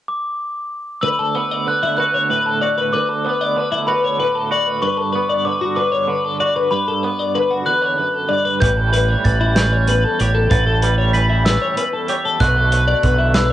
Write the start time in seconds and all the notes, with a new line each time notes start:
0.09 D6
1.01 D2 B4 E6
1.19 A4
1.35 B3 B4
1.52 D5
1.66 D3 B4 F#6
1.83 E4
1.97 F#4 B4 F#6
2.14 C#5
2.30 A2 B4
2.46 A4
2.61 F#4 D5
2.77 B4
2.92 D2 B4 D6
3.09 A4
3.24 B3 B4
3.41 D5
3.56 D3 B4
3.72 E4
3.87 F#4 B4 B5
4.04 C#5
4.18 A2 B4
4.35 A4
4.51 F#4 D5
4.67 B4
4.82 G2 B4 C#6
4.98 A4
5.13 B3 B4
5.29 D5
5.45 D3 B4 D6
5.61 F#4
5.76 D4 B4 D6
5.92 C#5
6.08 D3 B4
6.25 A4
6.40 F#4 D5
6.56 B4
6.71 G2 B4 B5
6.88 A4
7.03 B3 B4
7.19 D5
7.35 D3 B4
7.50 F#4
7.66 E2 B4 F#6
7.82 C#5
7.98 F#2 B4
8.14 A4
8.29 G2 D5
8.45 B4
8.60 A1 A2 E3 G3 C#4 B4 G6, kick, closed hi-hat
8.64 G4
8.77 A4
8.93 G3 B4, closed hi-hat
9.09 C#5
9.24 A1 E3 B4 A6, kick, closed hi-hat
9.41 E4
9.55 C#4 B4 G6, snare, closed hi-hat
9.72 C#5
9.87 E2 B4, closed hi-hat
10.04 A4
10.19 A1 G4 C#5, closed hi-hat
10.35 A4
10.50 A1 A2 B4 A6, kick, closed hi-hat
10.67 A4
10.83 G3 B4, closed hi-hat
10.98 C#5
11.13 E3 B4 B6, closed hi-hat
11.30 E4
11.45 C#4 B4 E6, snare, closed hi-hat
11.62 C#5
11.77 E2 B4, closed hi-hat
11.93 A4
12.08 G4 C#5, closed hi-hat
12.25 A4
12.40 B1 B2 D3 A3 D4 F#4 B4 F#6, kick, closed hi-hat
12.57 A4
12.72 A3 B4, closed hi-hat
12.88 D5
13.03 B1 D3 B4, kick, closed hi-hat
13.18 E4
13.34 D4 B4 E6, snare, closed hi-hat